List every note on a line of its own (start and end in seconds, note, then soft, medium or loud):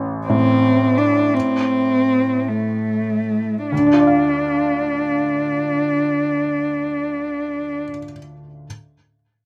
0.00 1.32 A1 soft
0.27 3.73 A2 soft
0.27 0.99 C4 medium
0.97 1.35 D4 soft
1.34 2.50 C4 medium
2.49 3.70 A3 soft
3.71 7.83 D2 soft
3.71 7.82 D4 soft
3.79 7.90 D3 soft
3.86 7.97 D4 soft
3.94 8.04 F4 soft
4.00 8.11 D5 soft
4.07 8.18 F5 soft